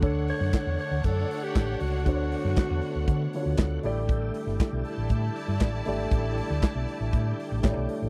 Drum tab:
HH |x-o-x-o-x-o-x-o-|x-o-x-o-x-o-x-o-|x-o-x-o-x-o-x-o-|x-o-x-o-x-o-x-o-|
CP |----x-------x---|----x-------x---|----x-------x---|----x-------x---|
SD |---oo-------o---|---oo-------o---|---oo-------o---|---oo-------o---|
BD |o---o---o---o---|o---o---o---o---|o---o---o---o---|o---o---o---o---|